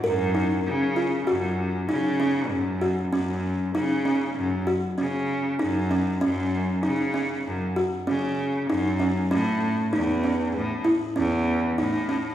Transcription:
0.04 cello F#2, kalimba A#4
0.34 kalimba D#4
0.66 cello C#3
0.96 kalimba F4
1.27 cello F#2, kalimba F#4
1.89 cello C#3, kalimba D#4
2.20 kalimba C#4
2.50 cello F#2
2.81 kalimba F#4
3.12 cello F#2, kalimba C#4
3.74 cello C#3, kalimba D#4
4.05 kalimba C#4
4.37 cello F#2
4.67 kalimba F#4
4.98 cello C#3, kalimba C#4
5.59 cello F#2, kalimba D#4
5.91 kalimba C#4
6.21 cello F#2, kalimba C#4
6.83 cello C#3, kalimba D#4
7.14 kalimba C#4
7.46 cello F#2
7.76 kalimba F#4
8.07 cello C#3, kalimba C#4
8.69 cello F#2, kalimba D#4
9.00 kalimba C#4
9.31 cello A2, kalimba C#4
9.93 cello E2, kalimba D#4
10.24 kalimba C#4
10.55 cello A2
10.85 kalimba E4
11.16 cello E2, kalimba C#4
11.78 cello A2, kalimba D#4
12.09 kalimba C#4

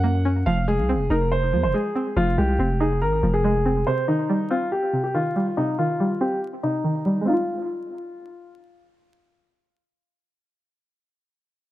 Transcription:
Already playing: 808-style bass F#2, synth pluck F3 F#3 C#4, grand piano F#5
0.04 synth pluck A#3
0.25 synth pluck C#4
0.46 808-style bass F1, synth pluck F3, grand piano F5
0.68 synth pluck G#3, grand piano G#4
0.78 808-style bass C2
0.89 synth pluck C4
0.94 808-style bass F1
1.10 808-style bass F1, synth pluck D#4, grand piano A#4
1.32 grand piano C5
1.53 808-style bass F2, synth pluck F3
1.63 808-style bass F1, grand piano C5
1.74 synth pluck G#3, grand piano G#4
1.95 synth pluck C4
2.16 808-style bass F1, synth pluck F3, grand piano F4
2.38 808-style bass C2, synth pluck G#3, grand piano G4
2.59 808-style bass F1, synth pluck C4
2.80 synth pluck D#4, grand piano G#4
3.02 808-style bass G#1, grand piano A#4
3.23 808-style bass F1, synth pluck F3
3.34 grand piano G#4
3.44 synth pluck G#3, grand piano G#4
3.66 synth pluck C4
3.87 synth pluck C3, grand piano C5
4.08 synth pluck D#3, grand piano D#4
4.29 synth pluck G3
4.50 synth pluck C4, grand piano F4
4.72 grand piano G4
4.93 synth pluck C3
5.04 grand piano G4
5.14 synth pluck D#3, grand piano F4
5.36 synth pluck G3
5.57 synth pluck C3, grand piano D#4
5.78 synth pluck D#3, grand piano F4
6.00 synth pluck G3
6.21 synth pluck C4, grand piano G4
6.63 synth pluck C3, grand piano D#4
6.84 synth pluck D#3
7.06 synth pluck G3
7.21 synth pluck G#3
7.25 synth pluck C4 D#4, grand piano F4
7.33 synth pluck F4

